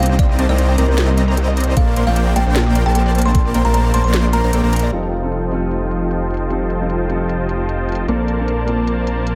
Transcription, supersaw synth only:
0.00 0.37 C4 medium
0.00 0.37 C5 medium
0.00 0.37 D5 medium
0.00 0.37 D#5 medium
0.00 0.37 A#5 medium
0.39 0.47 C4 loud
0.39 0.47 C5 medium
0.39 0.47 D5 medium
0.39 0.47 D#5 medium
0.39 0.47 A5 loud
0.49 0.76 C4 medium
0.49 0.76 C5 medium
0.49 0.76 D5 medium
0.49 0.76 D#5 medium
0.49 0.76 A#5 medium
0.78 0.86 C4 loud
0.78 0.86 C5 medium
0.78 0.86 D5 medium
0.78 0.86 D#5 medium
0.78 0.86 A#5 loud
0.88 1.75 C4 medium
0.88 1.75 C5 medium
0.88 1.75 D5 medium
0.88 1.75 D#5 medium
0.88 1.75 A#5 loud
1.77 1.94 A#3 medium
1.77 1.94 A#4 medium
1.77 1.94 C5 medium
1.77 1.94 A5 loud
1.97 2.04 A#3 medium
1.97 2.04 A#4 medium
1.97 2.04 C5 medium
1.97 2.04 D5 medium
1.97 2.04 C6 medium
2.07 2.34 A#3 medium
2.07 2.34 A#4 medium
2.07 2.34 C5 medium
2.07 2.34 D5 medium
2.07 2.34 G5 medium
2.36 2.44 A#3 medium
2.36 2.44 A#4 medium
2.36 2.44 C5 medium
2.36 2.44 D5 medium
2.36 2.44 A5 medium
2.46 2.83 A#3 medium
2.46 2.83 A#4 medium
2.46 2.83 C5 medium
2.46 2.84 D5 medium
2.46 2.83 G5 loud
2.86 3.52 A#3 medium
2.86 3.52 A#4 medium
2.86 3.52 C5 medium
2.86 3.52 D5 medium
2.86 3.52 A5 loud
3.55 3.63 A#3 loud
3.55 3.63 A#4 medium
3.55 3.62 C5 medium
3.55 3.62 D5 medium
3.55 3.62 G5 loud
3.65 3.92 A#3 medium
3.65 3.92 A#4 medium
3.65 3.92 C5 medium
3.65 3.92 D5 medium
3.65 3.92 A5 medium
3.94 4.02 A#3 loud
3.94 4.02 A#4 medium
3.94 4.02 C5 medium
3.94 4.02 D5 medium
3.94 4.02 A5 loud
4.05 4.42 A#3 medium
4.05 4.42 A#4 medium
4.05 4.42 C5 medium
4.05 4.42 D5 medium
4.05 4.42 C6 loud
4.44 4.51 A#3 medium
4.44 4.51 A#4 medium
4.44 4.51 C5 medium
4.44 4.51 D5 medium
4.44 4.51 A#5 loud
4.53 4.61 A#3 medium
4.53 4.61 A#4 medium
4.53 4.61 C5 medium
4.53 4.61 D5 medium
4.53 4.61 G5 loud
4.64 4.90 A#3 medium
4.64 4.90 A#4 medium
4.64 4.90 C5 medium
4.64 4.90 D5 medium
4.64 4.91 A#5 medium
4.93 8.06 F4 medium
4.93 8.06 D#5 medium
4.93 8.06 G5 medium
4.93 8.06 A5 medium
8.08 9.35 A#3 medium
8.08 9.35 A#4 medium
8.08 9.35 C5 medium
8.08 9.35 D5 medium
8.08 9.35 A5 medium

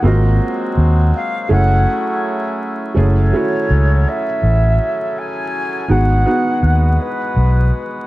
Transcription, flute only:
0.05 0.73 D#5 medium
1.15 1.48 F5 loud
1.51 2.20 F#5 loud
3.00 4.10 C#5 medium
4.08 5.19 E5 loud
5.18 5.93 G#5 loud
5.91 7.02 F#5 loud
7.01 8.07 B4 medium

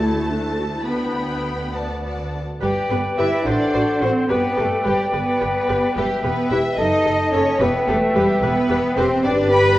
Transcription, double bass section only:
0.00 2.37 D2 soft
2.61 2.69 G1 soft
2.91 2.99 G1 soft
3.18 3.26 G1 soft
3.46 3.54 A1 soft
3.74 3.82 A1 soft
4.02 4.10 A1 soft
4.30 4.38 G1 soft
4.58 4.66 G1 soft
4.86 4.94 G1 soft
5.14 5.22 G1 medium
5.41 5.49 G1 medium
5.69 5.77 G1 soft
5.97 6.05 E1 soft
6.24 6.32 E1 soft
6.51 6.59 E1 soft
6.78 6.86 F#1 soft
7.05 7.13 F#1 soft
7.33 7.41 F#1 soft
7.60 7.68 E1 medium
7.88 7.96 E1 medium
8.15 8.23 E1 medium
8.43 8.51 E1 medium
8.70 8.78 E1 medium
8.97 9.05 E1 medium
9.24 9.79 G1 medium

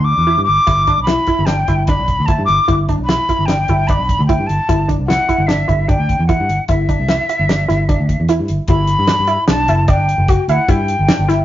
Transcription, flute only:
0.04 0.44 D6 medium
0.44 1.02 D6 medium
1.03 1.47 B5 medium
1.46 1.87 G5 medium
1.87 2.27 B5 medium
2.26 2.45 A5 medium
2.45 2.78 D6 medium
3.04 3.47 B5 medium
3.46 3.89 G5 medium
3.87 4.26 B5 medium
4.27 4.48 G5 medium
4.47 4.88 A5 medium
5.07 5.48 F#5 medium
5.47 5.90 E5 medium
5.88 6.26 G5 medium
6.27 6.65 F#5 medium
6.69 8.25 E5 medium
8.69 9.45 B5 medium
9.50 9.87 A5 medium
9.89 10.45 G5 medium
10.49 10.71 F#5 medium
10.70 11.45 G5 medium

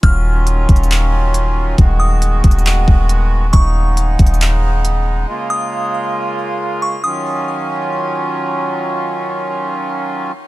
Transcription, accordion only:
0.03 3.50 D#3 medium
0.03 1.76 F#3 medium
0.03 1.76 C#4 medium
0.03 1.77 F4 medium
1.78 7.00 G#3 medium
1.78 5.25 B3 medium
1.78 3.52 F#4 medium
3.54 5.27 C#3 medium
3.54 5.27 D#4 medium
5.29 7.02 C#3 medium
5.29 7.02 A#3 medium
5.29 7.02 F4 medium
7.04 10.32 D#3 medium
7.04 10.32 F#3 medium
7.04 10.32 C#4 medium
7.04 10.32 F4 medium

